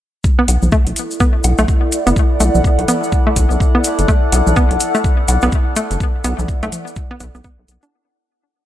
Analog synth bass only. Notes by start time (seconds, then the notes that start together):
0.48 B1
0.63 B1
0.87 B1
1.44 B1
1.59 B1
2.07 F#1
2.40 B1
2.55 B1
2.79 B1
3.36 B1
3.51 B1
3.99 F#1
4.32 B1
4.47 B1
4.71 B1
5.28 B1
5.43 B1
5.91 F#1
6.24 B1
6.39 B1
6.63 B1
7.20 B1
7.35 B1
7.59 B1
7.68 B1